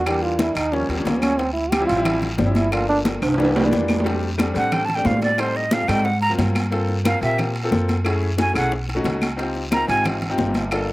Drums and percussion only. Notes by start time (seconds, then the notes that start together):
0.06 high bongo, high conga, high timbale, long guiro, claves
0.22 high bongo, high conga
0.39 high bongo, high conga, high timbale, short guiro
0.55 high bongo, high conga, high timbale, short guiro, claves
0.72 high bongo, high conga, long guiro
0.89 high bongo, high conga, high timbale
1.05 high bongo, low bongo, high conga, high timbale, short guiro
1.22 high conga, high timbale, short guiro, claves
1.39 high bongo, high conga, high timbale, long guiro
1.56 high bongo, high conga
1.72 high bongo, high conga, high timbale, short guiro, claves
1.88 high bongo, high conga, high timbale, short guiro
2.05 high bongo, high conga, low conga, high timbale, long guiro, claves
2.22 high conga, low conga, high timbale
2.38 high bongo, low bongo, high conga, short guiro
2.55 high bongo, high conga, high timbale, short guiro
2.72 high bongo, high conga, high timbale, long guiro, claves
2.89 high bongo, high conga
3.05 high bongo, high conga, high timbale, short guiro
3.22 high bongo, high conga, high timbale, short guiro, claves
3.34 high timbale, long guiro
3.39 high bongo, high conga
3.45 high timbale
3.56 high bongo, high conga, low timbale
3.72 high bongo, low bongo, high conga, short guiro
3.88 high conga, low timbale, short guiro, claves
4.00 low timbale
4.04 high bongo, high timbale, long guiro
4.23 high bongo, high conga
4.38 high bongo, high conga, high timbale, short guiro, claves
4.55 high bongo, high conga, high timbale, short guiro
4.72 high bongo, high conga, low conga, high timbale, long guiro, claves
4.89 high conga, low conga, high timbale
5.05 high bongo, low bongo, high conga, low timbale, short guiro
5.22 high bongo, high conga, high timbale, short guiro
5.38 high bongo, high conga, high timbale, long guiro, claves
5.55 high bongo, high conga
5.71 high bongo, high conga, high timbale, short guiro
5.88 high bongo, high timbale, short guiro, claves
6.05 high bongo, high conga, long guiro
6.21 high bongo, high conga, high timbale
6.38 high bongo, low bongo, high conga, high timbale, short guiro
6.55 high conga, high timbale, short guiro, claves
6.72 high bongo, high conga, high timbale, long guiro
6.89 high bongo, high conga
7.05 high bongo, high conga, high timbale, short guiro, claves
7.22 high bongo, high conga, high timbale, short guiro
7.38 high bongo, high conga, low conga, high timbale, long guiro, claves
7.56 high conga, high timbale
7.72 high bongo, low bongo, high conga, short guiro
7.89 high bongo, high conga, high timbale, short guiro
8.05 high bongo, high conga, high timbale, long guiro, claves
8.22 high bongo, high conga
8.38 high bongo, high conga, high timbale, short guiro
8.55 high bongo, high conga, high timbale, short guiro, claves
8.72 high bongo, high conga, long guiro
8.88 high bongo, high conga, high timbale
9.04 high bongo, low bongo, high conga, high timbale, short guiro
9.22 high conga, high timbale, short guiro, claves
9.38 high bongo, high conga, high timbale, long guiro
9.55 high bongo, high conga
9.71 high bongo, high conga, high timbale, short guiro, claves
9.89 high bongo, high conga, high timbale, short guiro
10.04 high bongo, high conga, low conga, high timbale, long guiro, claves
10.22 high conga, low conga, high timbale
10.38 high bongo, low bongo, high conga, short guiro
10.54 high bongo, high conga, high timbale, short guiro
10.71 high bongo, high conga, high timbale, long guiro, claves
10.88 high bongo, high conga